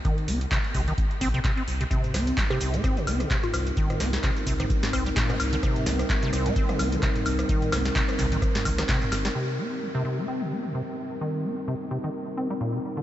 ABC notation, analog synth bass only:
X:1
M:4/4
L:1/8
Q:"Swing 16ths" 1/4=129
K:Cm
V:1 name="Analog synth bass" clef=bass
z C,, z C,, z B,,, z C,, | z C,, z C,, z C,, z C,, | z C,, z C,, z C,, z C,, | z C,, z C,, z C,, z C,, |
z C,, z C,, z C,, z G,,, | z8 | z8 |]